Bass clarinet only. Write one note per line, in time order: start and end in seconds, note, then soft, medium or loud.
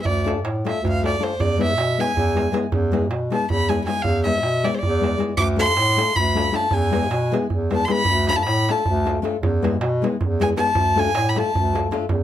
0.03 0.44 D2 medium
0.43 0.67 A2 medium
0.82 1.15 D2 loud
1.37 1.78 E2 medium
1.76 2.00 B2 medium
2.15 2.48 E2 loud
2.70 3.11 E2 loud
3.10 3.34 B2 medium
3.50 3.82 E2 medium
4.03 4.44 E2 loud
4.43 4.67 B2 medium
4.83 5.16 E2 loud
5.36 5.78 D2 loud
5.77 6.01 A2 loud
6.16 6.50 D2 loud
6.71 7.12 E2 loud
7.10 7.35 B2 loud
7.51 7.84 E2 medium
8.06 8.47 D2 loud
8.45 8.69 A2 loud
8.85 9.18 D2 loud
9.40 9.81 E2 loud
9.80 10.04 B2 loud
10.21 10.54 E2 loud
10.75 11.16 D2 medium
11.14 11.38 A2 loud
11.54 11.87 D2 loud
12.10 12.23 E2 medium